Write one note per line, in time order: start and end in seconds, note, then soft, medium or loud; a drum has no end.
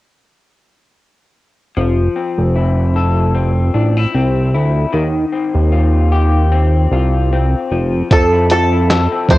1.77 2.09 F1 loud
1.77 4.96 F3 medium
2.16 3.34 C4 soft
2.38 3.71 F1 medium
2.56 3.74 E4 medium
2.96 5.02 A4 medium
3.35 4.14 C4 medium
3.74 4.06 A1 medium
3.74 3.97 D4 soft
3.97 4.53 E4 soft
4.15 4.56 C2 medium
4.15 5.32 C4 medium
4.54 4.86 D2 medium
4.54 5.03 E4 soft
4.93 5.25 D#2 loud
4.93 7.79 D#3 medium
5.32 6.52 C4 soft
5.55 6.87 D#2 medium
5.72 6.92 F4 medium
6.12 7.79 G4 medium
6.52 7.32 C4 medium
6.91 7.55 C2 medium
6.91 8.32 F4 medium
7.33 9.11 C4 medium
7.71 8.02 F1 medium
7.71 8.11 F3 medium
8.11 9.08 F2 loud
8.11 9.38 F3 medium
8.11 8.49 A4 medium
8.11 8.50 A4 medium
8.11 kick medium
8.11 closed hi-hat medium
8.32 8.71 E4 medium
8.50 8.89 A4 medium
8.50 9.30 A4 medium
8.50 closed hi-hat medium
8.72 9.28 E4 soft
8.90 9.38 A4 medium
8.90 snare loud
8.90 closed hi-hat medium
9.12 9.38 C4 medium
9.29 9.38 F2 medium
9.29 9.38 E4 medium
9.29 9.38 C5 medium
9.29 kick medium
9.29 closed hi-hat medium